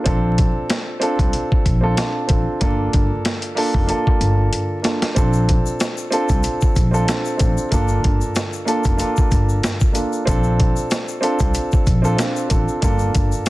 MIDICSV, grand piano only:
0, 0, Header, 1, 2, 480
1, 0, Start_track
1, 0, Tempo, 638298
1, 44, Time_signature, 4, 2, 24, 8
1, 10144, End_track
2, 0, Start_track
2, 0, Title_t, "Grand piano"
2, 0, Program_c, 0, 0
2, 31, Note_on_c, 0, 60, 92
2, 39, Note_on_c, 0, 62, 87
2, 46, Note_on_c, 0, 65, 75
2, 53, Note_on_c, 0, 69, 101
2, 705, Note_off_c, 0, 60, 0
2, 709, Note_off_c, 0, 62, 0
2, 713, Note_off_c, 0, 65, 0
2, 716, Note_off_c, 0, 69, 0
2, 750, Note_on_c, 0, 60, 90
2, 757, Note_on_c, 0, 62, 88
2, 764, Note_on_c, 0, 65, 84
2, 772, Note_on_c, 0, 69, 103
2, 1315, Note_off_c, 0, 60, 0
2, 1319, Note_off_c, 0, 62, 0
2, 1323, Note_off_c, 0, 65, 0
2, 1326, Note_off_c, 0, 69, 0
2, 1359, Note_on_c, 0, 60, 86
2, 1366, Note_on_c, 0, 62, 77
2, 1373, Note_on_c, 0, 65, 86
2, 1380, Note_on_c, 0, 69, 100
2, 1458, Note_off_c, 0, 60, 0
2, 1465, Note_off_c, 0, 62, 0
2, 1469, Note_on_c, 0, 60, 74
2, 1472, Note_off_c, 0, 65, 0
2, 1477, Note_on_c, 0, 62, 73
2, 1480, Note_off_c, 0, 69, 0
2, 1483, Note_on_c, 0, 65, 72
2, 1491, Note_on_c, 0, 69, 85
2, 1698, Note_off_c, 0, 60, 0
2, 1703, Note_off_c, 0, 62, 0
2, 1706, Note_off_c, 0, 65, 0
2, 1709, Note_on_c, 0, 60, 76
2, 1710, Note_off_c, 0, 69, 0
2, 1715, Note_on_c, 0, 62, 70
2, 1722, Note_on_c, 0, 65, 68
2, 1730, Note_on_c, 0, 69, 82
2, 1939, Note_off_c, 0, 60, 0
2, 1942, Note_off_c, 0, 62, 0
2, 1945, Note_off_c, 0, 65, 0
2, 1949, Note_off_c, 0, 69, 0
2, 1959, Note_on_c, 0, 58, 96
2, 1966, Note_on_c, 0, 62, 88
2, 1973, Note_on_c, 0, 65, 82
2, 1981, Note_on_c, 0, 69, 101
2, 2629, Note_off_c, 0, 58, 0
2, 2633, Note_off_c, 0, 62, 0
2, 2636, Note_off_c, 0, 65, 0
2, 2640, Note_off_c, 0, 69, 0
2, 2668, Note_on_c, 0, 58, 93
2, 2677, Note_on_c, 0, 62, 86
2, 2683, Note_on_c, 0, 65, 84
2, 2691, Note_on_c, 0, 69, 107
2, 2897, Note_off_c, 0, 58, 0
2, 2903, Note_off_c, 0, 62, 0
2, 2906, Note_off_c, 0, 65, 0
2, 2909, Note_on_c, 0, 58, 92
2, 2910, Note_off_c, 0, 69, 0
2, 2915, Note_on_c, 0, 62, 84
2, 2922, Note_on_c, 0, 65, 86
2, 2930, Note_on_c, 0, 69, 96
2, 3584, Note_off_c, 0, 58, 0
2, 3587, Note_off_c, 0, 62, 0
2, 3591, Note_off_c, 0, 65, 0
2, 3595, Note_off_c, 0, 69, 0
2, 3625, Note_on_c, 0, 58, 73
2, 3631, Note_on_c, 0, 62, 68
2, 3639, Note_on_c, 0, 65, 64
2, 3647, Note_on_c, 0, 69, 75
2, 3857, Note_off_c, 0, 58, 0
2, 3860, Note_off_c, 0, 62, 0
2, 3864, Note_off_c, 0, 65, 0
2, 3868, Note_off_c, 0, 69, 0
2, 3871, Note_on_c, 0, 60, 93
2, 3878, Note_on_c, 0, 62, 89
2, 3885, Note_on_c, 0, 65, 76
2, 3893, Note_on_c, 0, 69, 99
2, 4545, Note_off_c, 0, 60, 0
2, 4549, Note_off_c, 0, 62, 0
2, 4552, Note_off_c, 0, 65, 0
2, 4556, Note_off_c, 0, 69, 0
2, 4591, Note_on_c, 0, 60, 90
2, 4598, Note_on_c, 0, 62, 82
2, 4605, Note_on_c, 0, 65, 82
2, 4612, Note_on_c, 0, 69, 101
2, 5156, Note_off_c, 0, 60, 0
2, 5160, Note_off_c, 0, 62, 0
2, 5163, Note_off_c, 0, 65, 0
2, 5167, Note_off_c, 0, 69, 0
2, 5197, Note_on_c, 0, 60, 85
2, 5204, Note_on_c, 0, 62, 80
2, 5211, Note_on_c, 0, 65, 85
2, 5219, Note_on_c, 0, 69, 101
2, 5295, Note_off_c, 0, 60, 0
2, 5302, Note_off_c, 0, 62, 0
2, 5306, Note_on_c, 0, 60, 75
2, 5309, Note_off_c, 0, 65, 0
2, 5313, Note_on_c, 0, 62, 73
2, 5316, Note_off_c, 0, 69, 0
2, 5321, Note_on_c, 0, 65, 74
2, 5327, Note_on_c, 0, 69, 83
2, 5533, Note_off_c, 0, 60, 0
2, 5540, Note_off_c, 0, 62, 0
2, 5545, Note_off_c, 0, 65, 0
2, 5545, Note_on_c, 0, 60, 77
2, 5548, Note_off_c, 0, 69, 0
2, 5552, Note_on_c, 0, 62, 70
2, 5559, Note_on_c, 0, 65, 66
2, 5566, Note_on_c, 0, 69, 82
2, 5777, Note_off_c, 0, 60, 0
2, 5780, Note_off_c, 0, 62, 0
2, 5784, Note_off_c, 0, 65, 0
2, 5787, Note_off_c, 0, 69, 0
2, 5797, Note_on_c, 0, 58, 97
2, 5804, Note_on_c, 0, 62, 87
2, 5812, Note_on_c, 0, 65, 81
2, 5819, Note_on_c, 0, 69, 99
2, 6468, Note_off_c, 0, 58, 0
2, 6472, Note_off_c, 0, 62, 0
2, 6475, Note_off_c, 0, 65, 0
2, 6479, Note_off_c, 0, 69, 0
2, 6507, Note_on_c, 0, 58, 90
2, 6514, Note_on_c, 0, 62, 86
2, 6521, Note_on_c, 0, 65, 85
2, 6529, Note_on_c, 0, 69, 104
2, 6736, Note_off_c, 0, 58, 0
2, 6742, Note_off_c, 0, 62, 0
2, 6745, Note_off_c, 0, 65, 0
2, 6748, Note_on_c, 0, 58, 96
2, 6749, Note_off_c, 0, 69, 0
2, 6754, Note_on_c, 0, 62, 84
2, 6761, Note_on_c, 0, 65, 90
2, 6768, Note_on_c, 0, 69, 94
2, 7423, Note_off_c, 0, 58, 0
2, 7427, Note_off_c, 0, 62, 0
2, 7430, Note_off_c, 0, 65, 0
2, 7434, Note_off_c, 0, 69, 0
2, 7462, Note_on_c, 0, 58, 72
2, 7470, Note_on_c, 0, 62, 71
2, 7478, Note_on_c, 0, 65, 65
2, 7485, Note_on_c, 0, 69, 75
2, 7696, Note_off_c, 0, 58, 0
2, 7699, Note_off_c, 0, 62, 0
2, 7703, Note_off_c, 0, 65, 0
2, 7707, Note_off_c, 0, 69, 0
2, 7712, Note_on_c, 0, 60, 96
2, 7720, Note_on_c, 0, 62, 91
2, 7727, Note_on_c, 0, 65, 77
2, 7734, Note_on_c, 0, 69, 105
2, 8386, Note_off_c, 0, 60, 0
2, 8389, Note_off_c, 0, 62, 0
2, 8393, Note_off_c, 0, 65, 0
2, 8397, Note_off_c, 0, 69, 0
2, 8428, Note_on_c, 0, 60, 91
2, 8435, Note_on_c, 0, 62, 88
2, 8442, Note_on_c, 0, 65, 86
2, 8450, Note_on_c, 0, 69, 101
2, 8994, Note_off_c, 0, 60, 0
2, 8998, Note_off_c, 0, 62, 0
2, 9002, Note_off_c, 0, 65, 0
2, 9005, Note_off_c, 0, 69, 0
2, 9038, Note_on_c, 0, 60, 90
2, 9045, Note_on_c, 0, 62, 82
2, 9052, Note_on_c, 0, 65, 87
2, 9059, Note_on_c, 0, 69, 102
2, 9136, Note_off_c, 0, 60, 0
2, 9142, Note_off_c, 0, 62, 0
2, 9147, Note_on_c, 0, 60, 78
2, 9150, Note_off_c, 0, 65, 0
2, 9153, Note_on_c, 0, 62, 75
2, 9156, Note_off_c, 0, 69, 0
2, 9161, Note_on_c, 0, 65, 74
2, 9375, Note_off_c, 0, 60, 0
2, 9381, Note_off_c, 0, 62, 0
2, 9385, Note_off_c, 0, 65, 0
2, 9386, Note_on_c, 0, 60, 75
2, 9394, Note_on_c, 0, 62, 68
2, 9401, Note_on_c, 0, 65, 68
2, 9408, Note_on_c, 0, 69, 85
2, 9617, Note_off_c, 0, 60, 0
2, 9621, Note_off_c, 0, 62, 0
2, 9625, Note_off_c, 0, 65, 0
2, 9628, Note_off_c, 0, 69, 0
2, 9636, Note_on_c, 0, 58, 93
2, 9642, Note_on_c, 0, 62, 84
2, 9650, Note_on_c, 0, 65, 80
2, 9656, Note_on_c, 0, 69, 97
2, 10144, Note_off_c, 0, 58, 0
2, 10144, Note_off_c, 0, 62, 0
2, 10144, Note_off_c, 0, 65, 0
2, 10144, Note_off_c, 0, 69, 0
2, 10144, End_track
0, 0, End_of_file